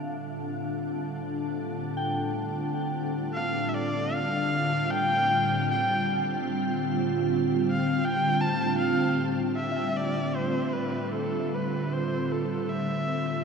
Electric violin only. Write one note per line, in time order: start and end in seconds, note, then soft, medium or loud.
3.34 3.71 F5 medium
3.69 3.76 E5 medium
3.75 4.15 D5 medium
4.13 4.92 F5 loud
4.91 5.69 G5 loud
5.71 6.25 G5 loud
7.70 8.06 F5 medium
8.05 8.43 G5 loud
8.41 8.78 A5 loud
8.79 9.34 F5 medium
9.56 9.98 E5 medium
9.97 10.37 D5 medium
10.35 10.75 C5 medium
10.74 11.13 B4 medium
11.13 11.55 A4 medium
11.54 11.94 B4 medium
11.93 12.33 C5 medium
12.31 12.71 A4 medium
12.69 13.44 E5 medium